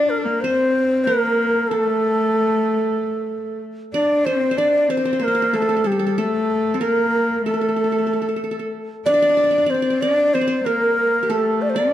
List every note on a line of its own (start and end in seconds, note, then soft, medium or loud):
0.00 0.26 D4 medium
0.00 0.40 F4 medium
0.00 0.11 D5 loud
0.00 0.47 D5 medium
0.10 0.20 A#4 medium
0.18 0.24 A4 medium
0.23 0.44 A#3 medium
0.23 0.42 A#4 medium
0.41 1.08 C4 medium
0.41 1.06 C5 loud
0.41 1.50 C5 medium
1.04 1.72 A#3 medium
1.04 1.69 A#4 medium
1.04 1.77 A#4 medium
1.68 3.62 A3 medium
1.68 3.61 A4 loud
1.68 3.59 A4 medium
3.93 4.27 D4 medium
3.93 4.27 D5 medium
3.93 4.58 D5 medium
4.25 4.58 C4 medium
4.25 4.59 C5 loud
4.25 4.51 C5 medium
4.51 4.89 C5 medium
4.56 4.90 D4 medium
4.56 4.92 D5 medium
4.56 5.57 D5 medium
4.88 5.23 C4 medium
4.88 4.97 C5 medium
4.88 5.25 C5 medium
4.97 5.05 C5 medium
5.05 5.12 C5 medium
5.13 5.19 C5 medium
5.19 5.55 A#3 medium
5.19 5.27 C5 medium
5.24 5.57 A#4 medium
5.24 5.34 C5 medium
5.35 5.42 C5 medium
5.42 6.48 C5 medium
5.53 5.87 A3 medium
5.53 5.61 A4 medium
5.53 5.88 A4 medium
5.62 5.68 A4 medium
5.69 5.76 A4 medium
5.77 5.84 A4 soft
5.84 6.19 G3 medium
5.84 6.20 G4 medium
5.84 5.91 A4 medium
5.92 5.99 A4 soft
5.99 6.06 A4 medium
6.07 6.18 A4 medium
6.18 6.76 A3 medium
6.18 6.74 A4 medium
6.18 6.82 A4 medium
6.74 6.83 C4 medium
6.74 6.87 A4 medium
6.81 7.45 A#3 medium
6.81 7.52 A#4 medium
6.81 7.42 A#4 medium
7.46 8.69 A3 medium
7.46 7.53 A4 medium
7.46 8.70 A4 medium
7.54 7.61 A4 soft
7.61 7.68 A4 soft
7.69 7.76 A4 soft
7.76 7.84 A4 soft
7.84 7.92 A4 soft
7.92 7.98 A4 soft
7.98 8.06 A4 soft
8.07 8.13 A4 soft
8.13 8.21 A4 soft
8.22 8.28 A4 soft
8.29 8.36 A4 soft
8.36 8.43 A4 soft
8.44 8.51 A4 soft
8.51 8.59 A4 soft
8.59 9.76 A4 soft
9.06 9.62 D4 medium
9.06 9.72 D5 loud
9.06 9.13 D5 medium
9.14 9.22 D5 medium
9.22 9.29 D5 medium
9.29 9.37 D5 medium
9.37 9.43 D5 medium
9.44 9.50 D5 soft
9.51 9.58 D5 medium
9.58 9.71 D4 medium
9.58 9.66 D5 medium
9.66 10.03 C4 medium
9.66 10.03 C5 medium
9.66 9.74 D5 medium
9.74 9.82 D5 medium
9.82 9.90 D5 medium
9.90 10.02 D5 medium
10.02 10.35 D4 medium
10.02 10.35 D5 loud
10.02 10.41 D5 medium
10.34 10.64 C4 medium
10.34 10.67 C5 medium
10.34 10.47 C5 medium
10.41 11.40 D5 medium
10.47 11.53 C5 medium
10.65 11.30 A#3 medium
10.65 11.32 A#4 loud
10.65 11.36 A#4 medium
11.23 11.93 G4 soft
11.28 11.76 A3 medium
11.28 11.93 A4 medium
11.28 11.63 A4 medium
11.62 11.71 D5 medium
11.70 11.79 C5 medium
11.74 11.93 D4 medium
11.74 11.93 D5 medium
11.74 11.93 D5 loud